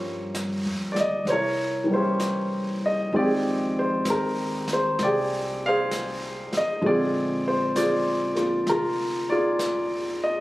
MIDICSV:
0, 0, Header, 1, 5, 480
1, 0, Start_track
1, 0, Tempo, 927357
1, 1616, Time_signature, 4, 2, 24, 8
1, 2576, Tempo, 918836
1, 5411, End_track
2, 0, Start_track
2, 0, Title_t, "Grand piano"
2, 0, Program_c, 0, 0
2, 0, Control_c, 0, 64, 127
2, 0, Note_on_c, 0, 53, 48
2, 0, Note_on_c, 0, 55, 43
2, 0, Note_on_c, 0, 58, 43
2, 0, Note_on_c, 0, 61, 52
2, 0, Note_on_c, 0, 70, 48
2, 0, Note_on_c, 0, 73, 50
2, 0, Note_on_c, 0, 77, 68
2, 164, Note_off_c, 0, 77, 0
2, 476, Note_on_c, 0, 74, 53
2, 489, Note_off_c, 0, 70, 0
2, 490, Note_off_c, 0, 73, 0
2, 510, Note_off_c, 0, 74, 0
2, 519, Note_on_c, 0, 75, 67
2, 631, Note_off_c, 0, 75, 0
2, 649, Note_off_c, 0, 53, 0
2, 650, Note_off_c, 0, 55, 0
2, 651, Note_off_c, 0, 58, 0
2, 652, Note_off_c, 0, 61, 0
2, 658, Control_c, 0, 64, 0
2, 660, Note_on_c, 0, 72, 50
2, 670, Note_off_c, 0, 72, 0
2, 674, Note_on_c, 0, 73, 68
2, 683, Note_on_c, 0, 70, 49
2, 684, Note_on_c, 0, 64, 47
2, 753, Control_c, 0, 64, 127
2, 952, Note_on_c, 0, 52, 43
2, 966, Note_off_c, 0, 73, 0
2, 971, Note_on_c, 0, 55, 40
2, 986, Note_on_c, 0, 58, 37
2, 1002, Note_off_c, 0, 64, 0
2, 1002, Note_on_c, 0, 72, 67
2, 1007, Note_on_c, 0, 61, 47
2, 1010, Note_on_c, 0, 64, 48
2, 1014, Note_on_c, 0, 67, 48
2, 1479, Note_on_c, 0, 75, 69
2, 1486, Note_off_c, 0, 72, 0
2, 1605, Note_off_c, 0, 52, 0
2, 1611, Note_off_c, 0, 70, 0
2, 1613, Note_off_c, 0, 64, 0
2, 1614, Note_off_c, 0, 55, 0
2, 1614, Note_off_c, 0, 67, 0
2, 1616, Note_off_c, 0, 75, 0
2, 1621, Note_off_c, 0, 58, 0
2, 1621, Note_on_c, 0, 51, 45
2, 1622, Control_c, 0, 64, 0
2, 1623, Note_on_c, 0, 53, 40
2, 1625, Note_on_c, 0, 56, 42
2, 1628, Note_on_c, 0, 60, 47
2, 1632, Note_off_c, 0, 61, 0
2, 1636, Note_on_c, 0, 74, 77
2, 1648, Note_on_c, 0, 67, 57
2, 1650, Note_on_c, 0, 68, 56
2, 1714, Control_c, 0, 64, 127
2, 1959, Note_off_c, 0, 74, 0
2, 1962, Note_on_c, 0, 72, 68
2, 2113, Note_off_c, 0, 72, 0
2, 2123, Note_on_c, 0, 70, 64
2, 2443, Note_off_c, 0, 70, 0
2, 2449, Note_on_c, 0, 72, 66
2, 2573, Note_off_c, 0, 67, 0
2, 2574, Note_off_c, 0, 68, 0
2, 2582, Note_off_c, 0, 72, 0
2, 2602, Note_on_c, 0, 74, 69
2, 2609, Note_on_c, 0, 68, 53
2, 2611, Note_on_c, 0, 67, 53
2, 2894, Note_off_c, 0, 74, 0
2, 2933, Note_off_c, 0, 68, 0
2, 2933, Note_on_c, 0, 77, 94
2, 2941, Note_on_c, 0, 68, 57
2, 2944, Note_on_c, 0, 72, 54
2, 3410, Note_on_c, 0, 75, 74
2, 3413, Note_off_c, 0, 77, 0
2, 3536, Note_on_c, 0, 50, 43
2, 3537, Note_off_c, 0, 67, 0
2, 3538, Note_off_c, 0, 53, 0
2, 3540, Note_off_c, 0, 68, 0
2, 3541, Note_off_c, 0, 72, 0
2, 3544, Note_off_c, 0, 51, 0
2, 3544, Note_off_c, 0, 75, 0
2, 3546, Note_off_c, 0, 56, 0
2, 3546, Note_on_c, 0, 53, 42
2, 3547, Note_off_c, 0, 60, 0
2, 3549, Control_c, 0, 64, 0
2, 3556, Note_on_c, 0, 56, 39
2, 3562, Note_on_c, 0, 74, 77
2, 3565, Note_on_c, 0, 60, 46
2, 3570, Note_on_c, 0, 68, 57
2, 3572, Note_on_c, 0, 65, 58
2, 3633, Control_c, 0, 64, 127
2, 3882, Note_on_c, 0, 72, 70
2, 3884, Note_off_c, 0, 74, 0
2, 4030, Note_off_c, 0, 65, 0
2, 4031, Note_on_c, 0, 74, 73
2, 4032, Note_off_c, 0, 68, 0
2, 4035, Note_off_c, 0, 72, 0
2, 4038, Note_on_c, 0, 65, 51
2, 4040, Note_on_c, 0, 68, 52
2, 4341, Note_off_c, 0, 65, 0
2, 4341, Note_on_c, 0, 58, 35
2, 4349, Note_on_c, 0, 65, 41
2, 4518, Note_off_c, 0, 65, 0
2, 4518, Note_on_c, 0, 70, 69
2, 4520, Note_off_c, 0, 74, 0
2, 4526, Note_on_c, 0, 65, 51
2, 4811, Note_off_c, 0, 70, 0
2, 4832, Note_on_c, 0, 74, 76
2, 4838, Note_off_c, 0, 65, 0
2, 4838, Note_off_c, 0, 68, 0
2, 4845, Note_on_c, 0, 65, 56
2, 4845, Note_on_c, 0, 68, 53
2, 5285, Note_off_c, 0, 74, 0
2, 5323, Note_on_c, 0, 75, 73
2, 5411, Note_off_c, 0, 50, 0
2, 5411, Note_off_c, 0, 53, 0
2, 5411, Note_off_c, 0, 56, 0
2, 5411, Note_off_c, 0, 58, 0
2, 5411, Note_off_c, 0, 60, 0
2, 5411, Note_off_c, 0, 65, 0
2, 5411, Note_off_c, 0, 68, 0
2, 5411, Note_off_c, 0, 75, 0
2, 5411, End_track
3, 0, Start_track
3, 0, Title_t, "Upright bass"
3, 0, Program_c, 1, 32
3, 0, Note_on_c, 1, 43, 68
3, 315, Note_off_c, 1, 43, 0
3, 339, Note_on_c, 1, 41, 47
3, 484, Note_off_c, 1, 41, 0
3, 493, Note_on_c, 1, 38, 54
3, 641, Note_off_c, 1, 38, 0
3, 648, Note_on_c, 1, 36, 64
3, 1593, Note_off_c, 1, 36, 0
3, 1617, Note_on_c, 1, 41, 68
3, 2077, Note_off_c, 1, 41, 0
3, 2096, Note_on_c, 1, 39, 57
3, 2556, Note_off_c, 1, 39, 0
3, 2583, Note_on_c, 1, 36, 66
3, 3366, Note_off_c, 1, 36, 0
3, 3539, Note_on_c, 1, 34, 66
3, 4479, Note_off_c, 1, 34, 0
3, 4503, Note_on_c, 1, 29, 64
3, 5411, Note_off_c, 1, 29, 0
3, 5411, End_track
4, 0, Start_track
4, 0, Title_t, "Muted upright bass strokes"
4, 3385, Note_on_c, 9, 29, 32
4, 3438, Note_off_c, 9, 29, 0
4, 5411, End_track
5, 0, Start_track
5, 0, Title_t, "Drums"
5, 179, Note_on_c, 9, 25, 31
5, 179, Note_on_c, 9, 38, 35
5, 179, Note_on_c, 9, 44, 39
5, 231, Note_off_c, 9, 38, 0
5, 231, Note_off_c, 9, 44, 0
5, 498, Note_on_c, 9, 38, 23
5, 549, Note_off_c, 9, 38, 0
5, 657, Note_off_c, 9, 25, 0
5, 657, Note_on_c, 9, 25, 29
5, 657, Note_on_c, 9, 38, 24
5, 708, Note_off_c, 9, 38, 0
5, 1136, Note_off_c, 9, 25, 0
5, 1136, Note_on_c, 9, 25, 29
5, 1136, Note_on_c, 9, 38, 36
5, 1136, Note_on_c, 9, 44, 46
5, 1188, Note_off_c, 9, 38, 0
5, 1188, Note_off_c, 9, 44, 0
5, 1619, Note_off_c, 9, 25, 0
5, 1619, Note_on_c, 9, 25, 29
5, 2097, Note_off_c, 9, 25, 0
5, 2097, Note_on_c, 9, 25, 29
5, 2097, Note_on_c, 9, 38, 37
5, 2097, Note_on_c, 9, 44, 42
5, 2149, Note_off_c, 9, 38, 0
5, 2149, Note_off_c, 9, 44, 0
5, 2421, Note_on_c, 9, 38, 23
5, 2472, Note_off_c, 9, 38, 0
5, 2582, Note_off_c, 9, 25, 0
5, 2582, Note_on_c, 9, 25, 37
5, 2582, Note_on_c, 9, 38, 25
5, 2634, Note_off_c, 9, 38, 0
5, 3065, Note_off_c, 9, 25, 0
5, 3065, Note_on_c, 9, 25, 30
5, 3065, Note_on_c, 9, 38, 38
5, 3065, Note_on_c, 9, 44, 46
5, 3118, Note_off_c, 9, 38, 0
5, 3118, Note_off_c, 9, 44, 0
5, 3385, Note_on_c, 9, 38, 23
5, 3437, Note_off_c, 9, 38, 0
5, 3547, Note_off_c, 9, 25, 0
5, 3547, Note_on_c, 9, 25, 34
5, 4028, Note_off_c, 9, 25, 0
5, 4028, Note_on_c, 9, 25, 33
5, 4028, Note_on_c, 9, 38, 36
5, 4028, Note_on_c, 9, 44, 50
5, 4080, Note_off_c, 9, 38, 0
5, 4080, Note_off_c, 9, 44, 0
5, 4346, Note_on_c, 9, 38, 24
5, 4398, Note_off_c, 9, 38, 0
5, 4503, Note_off_c, 9, 25, 0
5, 4503, Note_on_c, 9, 25, 32
5, 4503, Note_on_c, 9, 38, 25
5, 4555, Note_off_c, 9, 38, 0
5, 4986, Note_off_c, 9, 25, 0
5, 4986, Note_on_c, 9, 25, 28
5, 4986, Note_on_c, 9, 38, 40
5, 4986, Note_on_c, 9, 44, 44
5, 5039, Note_off_c, 9, 38, 0
5, 5039, Note_off_c, 9, 44, 0
5, 5411, Note_off_c, 9, 25, 0
5, 5411, End_track
0, 0, End_of_file